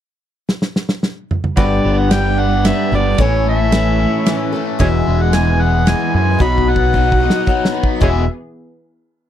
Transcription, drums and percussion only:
0.49 snare
0.62 snare
0.76 snare
0.89 snare
1.03 snare
1.31 mid tom
1.44 mid tom
1.57 kick, ride
2.11 snare, ride
2.65 snare, ride
3.18 kick, ride
3.72 snare, ride
4.26 snare, ride
4.80 kick, ride
5.33 snare, ride
5.87 snare, ride
6.40 kick
6.58 kick
6.76 kick
6.94 kick
7.12 kick
7.30 snare
7.47 kick
7.65 snare
7.83 kick
8.02 kick

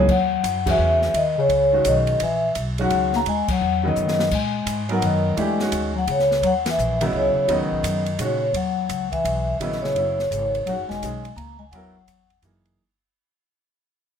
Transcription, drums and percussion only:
0.09 kick, crash
0.44 hi-hat pedal, ride
0.66 kick, crash
1.02 snare
1.14 ride
1.50 ride
1.85 hi-hat pedal, ride
2.07 ride
2.20 ride
2.55 hi-hat pedal, ride
2.78 ride
2.90 ride
3.13 snare
3.26 ride
3.48 kick, crash
3.96 hi-hat pedal, high tom
4.08 snare
4.19 snare
4.31 kick, crash
4.67 hi-hat pedal, ride
4.89 ride
5.02 ride
5.37 ride
5.60 snare
5.72 hi-hat pedal, ride
6.08 ride
6.19 snare
6.31 snare
6.43 ride
6.66 snare, ride
6.79 hi-hat pedal
7.01 ride
7.49 ride
7.84 hi-hat pedal, ride
8.06 ride
8.19 hi-hat pedal, ride
8.54 ride
8.89 hi-hat pedal, ride
9.12 kick, ride
9.25 ride
9.61 ride
9.72 snare
9.84 snare
9.96 ride
10.19 snare
10.32 hi-hat pedal, ride
10.55 ride
10.67 ride
10.90 snare
11.03 hi-hat pedal, ride
11.25 ride
11.38 ride
11.73 ride
12.08 hi-hat pedal, ride
12.30 ride
12.42 hi-hat pedal, ride
12.65 ride

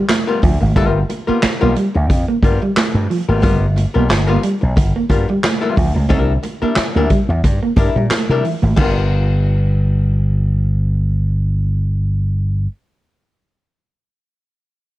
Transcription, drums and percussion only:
0.09 snare, clap, closed hi-hat, high conga
0.43 kick, open hi-hat
0.61 high conga
0.76 kick, closed hi-hat
1.10 closed hi-hat, muted conga
1.43 snare, clap, closed hi-hat, high conga
1.76 closed hi-hat
2.10 kick, closed hi-hat
2.43 kick, closed hi-hat, muted conga
2.77 snare, clap, closed hi-hat, high conga
3.11 open hi-hat
3.29 high conga
3.43 kick, closed hi-hat
3.77 closed hi-hat, muted conga
4.10 snare, clap, closed hi-hat, high conga
4.43 closed hi-hat
4.77 kick, closed hi-hat
5.09 kick, closed hi-hat, muted conga
5.43 snare, clap, closed hi-hat, high conga
5.77 kick, open hi-hat
5.96 high conga
6.10 kick, closed hi-hat
6.43 closed hi-hat, muted conga
6.76 snare, clap, closed hi-hat, high conga
7.10 kick, closed hi-hat
7.43 kick, closed hi-hat, muted conga
7.76 kick, closed hi-hat, muted conga
8.10 snare, clap, closed hi-hat, high conga
8.45 open hi-hat
8.62 high conga
8.77 kick, crash, muted conga

